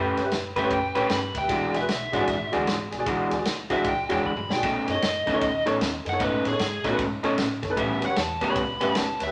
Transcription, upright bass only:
Already playing: F#2
0.17 G2
0.32 F#2
0.56 G2
0.70 F#2
0.96 A2
1.10 G2
1.34 D2
1.49 E1
1.74 B1
1.89 B1
2.13 G#1
2.28 G#1
2.53 D2
2.68 G#1
2.92 B1
3.06 C#2
3.31 D2
3.46 C#2
3.70 D2
3.85 C#2
4.10 E2
4.24 D2
4.49 B1
4.63 B1
4.88 F#2
5.03 F#2
5.27 D#2
5.42 D#2
5.66 A1
5.81 D#2
6.05 F#2
6.20 G#2
6.45 A2
6.59 G#2
6.84 A2
6.99 G#2
7.23 B2
7.38 A2
7.63 F#2
7.77 A1
8.02 E2
8.17 E2
8.41 C#2
8.56 C#2
8.80 G1
8.95 C#2
9.21 D2

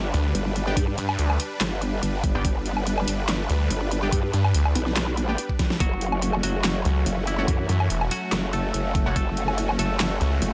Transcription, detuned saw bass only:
0.14 D2
0.98 G2
1.19 D2
2.35 G1
3.50 D2
4.34 G2
4.54 D2
6.85 C#2
7.69 F#2
7.90 E1
9.06 F#1
10.21 C#2

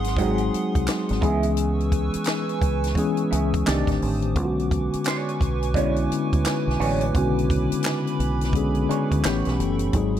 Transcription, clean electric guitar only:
0.18 C4 F#4 G#4
0.88 muted clean electric guitar stroke
1.21 B3 E4 G#4
3.31 B3 E4 G#4
3.66 D#4 A4 D5
5.06 D4 G#4 C#5
5.75 D4 G#4 C#5
6.45 muted clean electric guitar stroke
6.80 D4 G#4 C#5
8.89 D4 G#4 C#5
9.24 G4 B4 C#5

